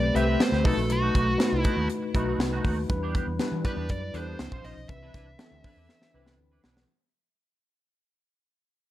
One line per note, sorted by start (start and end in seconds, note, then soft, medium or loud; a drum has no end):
0.00 0.10 B1 medium
0.00 0.14 A3 medium
0.00 0.15 C4 medium
0.00 0.15 G4 medium
0.00 0.15 B4 loud
0.00 0.16 D5 loud
0.00 muted clean electric guitar stroke medium
0.14 0.35 C2 loud
0.14 0.62 A3 medium
0.14 0.65 C4 medium
0.14 0.28 C4 medium
0.14 0.65 G4 medium
0.14 0.28 G4 loud
0.14 0.64 B4 medium
0.14 0.27 B4 loud
0.14 0.41 E5 loud
0.14 closed hi-hat medium
0.28 0.40 C4 medium
0.28 0.40 G4 medium
0.28 0.41 B4 medium
0.40 0.67 C5 loud
0.40 muted clean electric guitar stroke soft
0.40 snare loud
0.40 closed hi-hat medium
0.52 0.62 D2 medium
0.52 0.65 C4 medium
0.52 0.65 G4 medium
0.52 0.68 B4 medium
0.52 snare soft
0.64 0.75 B1 loud
0.64 1.24 A3 medium
0.64 0.85 A3 medium
0.64 1.25 D#4 medium
0.64 0.77 D#4 medium
0.64 1.25 F#4 medium
0.64 0.77 F#4 medium
0.64 0.92 A4 loud
0.64 1.25 B4 medium
0.64 kick loud
0.64 open hi-hat medium
0.77 0.89 A#1 loud
0.77 muted clean electric guitar stroke soft
0.89 1.09 B1 loud
0.89 1.59 F#4 medium
0.89 muted clean electric guitar stroke soft
0.89 closed hi-hat loud
1.02 1.13 A3 medium
1.02 1.15 D#4 medium
1.02 1.15 F#4 medium
1.15 1.34 B1 loud
1.15 1.30 A3 medium
1.15 1.27 D#4 medium
1.15 1.26 F#4 medium
1.15 kick medium
1.15 closed hi-hat medium
1.27 muted clean electric guitar stroke soft
1.38 1.93 A3 medium
1.38 1.93 D#4 medium
1.38 1.93 F#4 medium
1.38 1.94 B4 medium
1.38 muted clean electric guitar stroke soft
1.38 snare loud
1.38 closed hi-hat loud
1.52 1.62 C2 medium
1.52 muted clean electric guitar stroke soft
1.59 1.87 E4 medium
1.64 1.77 A3 medium
1.64 1.77 D#4 medium
1.64 1.76 F#4 medium
1.64 kick loud
1.64 closed hi-hat medium
1.77 1.87 D#2 medium
1.77 1.88 A3 soft
1.77 1.89 D#4 medium
1.77 1.89 F#4 medium
1.90 muted clean electric guitar stroke soft
1.90 closed hi-hat medium
2.03 muted clean electric guitar stroke medium
2.14 2.34 B1 medium
2.14 2.69 A3 medium
2.14 2.28 A3 medium
2.14 2.69 D#4 medium
2.14 2.28 D#4 medium
2.14 2.69 F#4 medium
2.14 2.27 F#4 medium
2.14 2.69 B4 loud
2.14 kick medium
2.14 closed hi-hat medium
2.28 2.40 A3 medium
2.28 2.40 D#4 medium
2.28 2.40 F#4 medium
2.38 2.58 C2 medium
2.38 muted clean electric guitar stroke soft
2.38 snare loud
2.38 closed hi-hat medium
2.53 2.64 A3 medium
2.53 2.65 D#4 medium
2.53 2.65 F#4 medium
2.65 2.84 D#2 medium
2.65 2.81 A3 medium
2.65 2.78 D#4 medium
2.65 2.77 F#4 medium
2.65 kick medium
2.65 open hi-hat medium
2.78 muted clean electric guitar stroke soft
2.88 3.19 E2 loud
2.88 3.25 G3 medium
2.88 3.25 D4 medium
2.88 3.25 E4 medium
2.88 3.26 B4 medium
2.88 muted clean electric guitar stroke soft
2.88 kick loud
2.88 closed hi-hat loud
3.03 3.14 B3 medium
3.03 3.14 D4 medium
3.03 3.15 G4 medium
3.15 3.30 B3 medium
3.15 3.27 D4 medium
3.15 3.26 G4 medium
3.15 kick medium
3.15 closed hi-hat medium
3.27 3.37 E2 medium
3.27 muted clean electric guitar stroke soft
3.39 3.93 G3 loud
3.39 3.93 D4 medium
3.39 3.94 E4 medium
3.39 3.94 B4 loud
3.39 muted fingered electric bass stroke soft
3.39 muted clean electric guitar stroke soft
3.39 snare loud
3.39 closed hi-hat medium
3.52 3.62 E3 loud
3.52 muted clean electric guitar stroke medium
3.65 3.76 B3 medium
3.65 3.76 D4 medium
3.65 3.75 G4 medium
3.65 3.91 B4 medium
3.65 kick loud
3.65 closed hi-hat medium
3.77 3.90 E2 medium
3.77 3.88 B3 medium
3.77 3.89 D4 medium
3.77 3.89 G4 medium
3.89 4.09 F#2 medium
3.89 4.15 D5 loud
3.89 kick medium
3.89 closed hi-hat medium
4.01 muted clean electric guitar stroke soft
4.14 4.34 E2 loud
4.14 4.39 G3 medium
4.14 4.26 B3 medium
4.14 4.39 D4 medium
4.14 4.26 D4 loud
4.14 4.39 E4 medium
4.14 4.25 G4 medium
4.14 4.40 A4 medium
4.14 4.66 C5 medium
4.14 closed hi-hat medium
4.27 4.43 B3 medium
4.27 4.39 D4 medium
4.27 4.39 G4 medium
4.39 4.49 C#2 loud
4.39 4.79 F3 medium
4.39 4.80 C#4 medium
4.39 4.80 D#4 medium
4.39 4.80 C5 medium
4.39 snare loud
4.39 closed hi-hat medium
4.52 4.62 A#1 medium
4.52 4.64 D#4 medium
4.52 4.64 F4 medium
4.52 4.64 C5 medium
4.52 kick medium
4.64 4.74 A#1 medium
4.64 4.80 D#4 medium
4.64 4.76 F4 medium
4.64 4.76 C5 medium
4.64 4.89 D#5 loud
4.64 open hi-hat medium
4.77 4.87 B1 medium
4.77 muted clean electric guitar stroke soft
4.88 5.09 C2 loud
4.88 5.25 E3 medium
4.88 5.25 C4 medium
4.88 5.25 D4 medium
4.88 5.25 B4 medium
4.88 6.35 E5 loud
4.88 muted clean electric guitar stroke soft
4.88 kick loud
4.88 closed hi-hat loud
5.03 5.14 D4 medium
5.03 5.14 E4 medium
5.03 5.15 B4 medium
5.14 5.34 C2 loud
5.14 5.30 D4 medium
5.14 5.27 E4 medium
5.14 5.26 B4 medium
5.14 kick medium
5.14 snare soft
5.14 closed hi-hat medium
5.27 muted clean electric guitar stroke soft
5.38 5.93 E3 medium
5.38 5.93 C4 medium
5.38 5.93 D4 medium
5.38 5.93 A4 medium
5.38 muted clean electric guitar stroke soft
5.38 snare loud
5.38 closed hi-hat medium
5.51 5.61 D2 medium
5.51 muted clean electric guitar stroke soft
5.64 5.77 D4 medium
5.64 5.77 E4 medium
5.64 5.76 B4 medium
5.64 kick medium
5.64 open hi-hat medium
5.76 5.86 E2 medium
5.76 5.88 D4 medium
5.76 5.88 E4 medium
5.76 5.88 B4 medium
5.89 muted clean electric guitar stroke soft
5.89 snare medium
6.02 muted clean electric guitar stroke soft
6.02 snare medium
6.14 6.39 C2 medium
6.14 6.68 E3 medium
6.14 6.68 C4 medium
6.14 6.26 D4 medium
6.14 6.68 D4 medium
6.14 6.26 E4 medium
6.14 6.69 B4 medium
6.14 6.25 B4 medium
6.26 6.38 D4 medium
6.26 6.38 E4 medium
6.26 6.38 B4 medium
6.26 snare medium
6.39 6.59 D2 medium
6.39 muted clean electric guitar stroke soft
6.52 6.63 D4 medium
6.52 6.63 E4 medium
6.52 6.64 B4 medium
6.64 6.84 B1 medium
6.64 6.84 D4 medium
6.64 6.76 E4 medium
6.64 6.75 B4 medium
6.64 snare loud
6.77 muted clean electric guitar stroke soft
6.77 snare medium